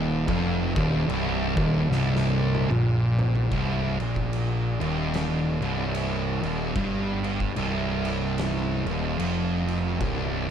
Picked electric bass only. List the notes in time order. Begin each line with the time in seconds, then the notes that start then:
Already playing: D#1
0.28 F1
0.76 D#1
1.08 C1
1.57 D#1
1.89 C1
2.71 A#1
3.52 C1
4.00 A#1
4.80 D#1
5.61 C1
6.42 D#1
6.76 G1
7.56 C1
8.85 D#1
9.19 F1
10.01 C1